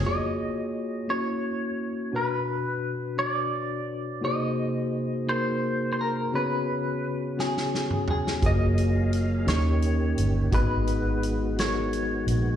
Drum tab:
HH |------------|------------|------------|------------|
SD |------------|------------|------------|------ooo--o|
T2 |------------|------------|------------|---------o--|
FT |------------|------------|------------|----------o-|
BD |------------|------------|------------|------------|

HH |x-x-x-x-x-x-|x-x-x-x-x-x-|
SD |------o-----|------o-----|
T2 |------------|------------|
FT |------------|------------|
BD |o-----------|o-----------|